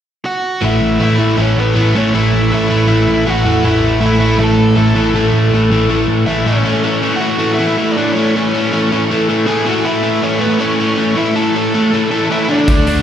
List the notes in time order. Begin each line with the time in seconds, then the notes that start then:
0.25 F#4 F#5
0.62 A1 A2 E3 A3 E4 E5
0.81 A1
1.00 A1 A2 E3 A3 E4 E5
1.18 A2 E3 A3
1.37 A1 A2 E3 A3 C#4
1.41 C#5
1.57 A1 B3 B4
1.75 A1 A2 E3 A3
1.95 A1 A2 E3 A3 C#4 C#5
2.13 A1 A2 E3 A3 E4 E5
2.34 A1
2.52 A1 A2 E3 A3 E4 E5
2.70 A1 A2 E3 A3
2.88 A1 A2 E3 A3
3.08 A1
3.26 A1 A2 E3 A3 F#4 F#5
3.45 E2 A2 E3 A3
3.64 A1 A2 E3 A3 E4 E5
3.82 A1
4.00 A1 A2 E3 A3 E4
4.06 E5
4.19 A2 E3 A3
4.39 A1 A2 E3 A3 A4
4.44 A5
4.58 A1
4.76 A1 A2 E3 A3
4.95 A1 A2 E3 A3
5.14 A1 A2 E3 A3
5.32 A1
5.52 A1 A2 E3 A3
5.70 A1 A2 E3 A3
5.89 A1 A2 E3 A3
6.08 A1
6.26 A1 A2 E3 A3 E4 E5
6.43 A1 A2 E3 C#4 C#5
6.47 A3
6.64 A2 E3 A3
6.83 A2 E3 A3
7.02 A2 E3 A3
7.16 A2 F#4 F#5
7.20 E3 A3
7.38 A2 E3 A3
7.54 E5
7.58 A2 E3 A3 E4
7.77 A2 E3 A3
7.92 D5
7.96 A2 E3 A3 D4
8.13 A2 E3 A3 C#4 C#5
8.32 C#4 C#5
8.36 A2 E3 A3
8.54 A2 E3 A3
8.72 A2 E3 A3
8.91 A2 E3 A3
9.11 A2 E3 A3
9.29 A2 E3 A3
9.46 A2 E3 A3 G#4 G#5
9.66 A2 E3 A3 F#4 F#5
9.85 A2 E3 A3 E4 E5
10.02 A2 E3 A3
10.23 A2 E3 A3 C#4 C#5
10.35 A4
10.39 A2 E3 A3 B3 B4
10.60 A2 E3 A3 C#4 C#5
10.80 A2 E3 A3
10.97 A2 E3 A3
11.16 A2 E3 A3 E4 E5
11.35 A2 E3 A3 A4 A5
11.55 A2 E3 A3
11.74 A2 E3 A3
11.93 A2 E3 A3
12.11 A2 E3 A3
12.30 A2 E3 A3 E4 E5
12.49 D3 A3 D4 D5
12.68 D2 D3 A3 D4, kick, open hi-hat
12.87 D2 D3 A3 D4, open hi-hat